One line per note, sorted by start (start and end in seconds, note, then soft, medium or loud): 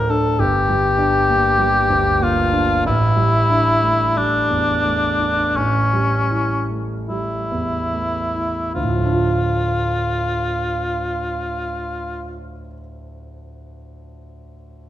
0.00 0.35 D2 medium
0.00 0.41 A2 soft
0.00 0.41 F3 medium
0.00 0.41 A3 medium
0.00 0.10 D4 medium
0.00 0.12 A#4 medium
0.10 0.39 D4 soft
0.10 0.41 A4 medium
0.39 2.80 G1 medium
0.39 2.24 G4 medium
0.69 1.17 G3 soft
0.98 1.47 D4 medium
1.29 1.78 A#3 soft
1.58 2.08 G3 soft
1.90 2.40 D2 soft
2.21 2.71 A#3 soft
2.21 2.85 F4 medium
2.53 2.84 D4 soft
2.85 5.52 A1 medium
2.85 4.18 E4 medium
3.17 3.69 G3 soft
3.50 4.03 D4 soft
3.83 4.37 A3 soft
4.17 4.71 G3 soft
4.17 5.58 D4 medium
4.50 5.06 E2 soft
4.84 5.41 A3 soft
5.20 5.56 D4 soft
5.56 8.73 A1 medium
5.56 6.70 C#4 medium
5.93 6.54 G3 soft
6.31 6.93 E4 soft
6.70 7.34 A3 soft
7.09 7.75 G3 soft
7.09 8.72 E4 soft
7.51 8.19 E2 soft
7.93 8.60 A3 soft
8.35 8.76 E4 soft
8.74 12.44 D2 soft
8.74 12.42 F4 medium
8.83 12.52 A2 soft
8.90 12.59 F3 soft
8.97 12.66 A3 soft
9.05 12.74 D4 soft
9.12 12.80 F4 soft